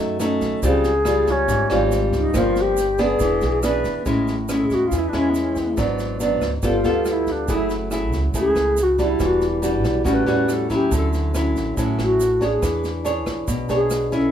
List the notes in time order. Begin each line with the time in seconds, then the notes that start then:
Already playing: F#3 A3 C#4 D#4
0.00 F#2
0.20 A3 C#4 D#4, cross-stick, snare, shaker
0.41 B1, kick, snare, shaker
0.62 C#2 C#3 G3 C4 F4 G#4, kick, snare, shaker
0.84 snare, shaker
1.05 G3 F4, cross-stick, snare, shaker
1.27 C#4, kick, snare, shaker
1.48 G#1 G#2, kick, snare, shaker
1.70 G#1 G3 C4 F4, cross-stick, snare, shaker
1.91 snare, shaker
2.12 C#2, kick, snare, shaker
2.17 D#4
2.34 G1 G2 F3 A#3 C4 F4, kick, cross-stick, snare, shaker
2.56 snare, shaker
2.61 G4
2.77 snare, shaker
2.98 B3 D4 G#4, kick, cross-stick, snare, shaker
3.03 G#4
3.20 E1 E3, kick, snare, shaker
3.41 B1 G#4, snare, shaker
3.63 B3 D4 G#4 B4, cross-stick, snare, shaker
3.84 E1, kick, snare, shaker
4.06 A1 A2 G#3 C#4 E4, kick, snare, shaker
4.28 snare, shaker
4.49 G#3 C#4 E4, cross-stick, snare, shaker
4.54 A4
4.65 G#4
4.70 E2 F#4, kick, snare, shaker
4.87 F4
4.92 E2 E3, kick, snare, shaker
4.98 E4
5.08 D4
5.13 E2 G#3 C#4 E4, cross-stick, snare, shaker
5.29 B3
5.34 snare, shaker
5.39 C#4
5.56 kick, snare, shaker
5.77 G#1 G#2 F#3 B3 D4, kick, cross-stick, snare, shaker
5.99 snare, shaker
6.20 F#3 B3 D4, snare, shaker
6.41 D2, kick, cross-stick, snare, shaker
6.62 G1 G3 B3 F4 A4, kick, snare, shaker
6.69 F4
6.84 D2 B3 F4 A4, snare, shaker
7.05 cross-stick, snare, shaker
7.11 E4
7.27 kick, snare, shaker
7.31 D4
7.48 F#1 F#3 A3 E4 G#4, kick, snare, shaker
7.54 E4
7.70 snare, shaker
7.91 A3 E4 G#4, cross-stick, snare, shaker
8.12 C#2, kick, snare, shaker
8.34 C#2 C#3 A3 E4 G#4, kick, snare, shaker
8.39 G#4
8.55 C#2, cross-stick, snare, shaker
8.77 snare, shaker
8.82 F#4
8.98 G3 D4 E4 F#4, kick, snare, shaker
9.20 E1 E3, kick, cross-stick, snare, shaker
9.26 F#4
9.41 snare, shaker
9.62 G3 D4 F#4, snare, shaker
9.84 B1, kick, cross-stick, snare, shaker
10.04 A1 A2 G3 C#4 F#4, kick, snare, shaker
10.11 B4
10.26 E2 G3 C#4 F#4, snare, shaker
10.48 cross-stick, snare, shaker
10.53 A4
10.70 F#3 C#4 E4 G4, kick, snare, shaker
10.91 D2 D3, kick, snare, shaker
10.96 A4
11.13 snare, shaker
11.34 F#3 C#4 E4, cross-stick, snare, shaker
11.56 A1, kick, snare, shaker
11.77 A1 A2 F#3 C#4 E4, kick, snare, shaker
11.98 A1, cross-stick, snare, shaker
12.03 F#4
12.20 snare, shaker
12.41 D4 G#4 C#5, kick, snare, shaker
12.62 E2 E3, kick, cross-stick, snare, shaker
12.84 snare, shaker
13.04 D4 G#4 C#5, snare, shaker
13.26 B1, kick, cross-stick, snare, shaker
13.48 B1 B2, kick, snare, shaker
13.69 B1 D4 G#4 C#5, snare, shaker
13.73 G#4
13.90 cross-stick, snare, shaker
14.12 C#4 E4 A4, kick, snare, shaker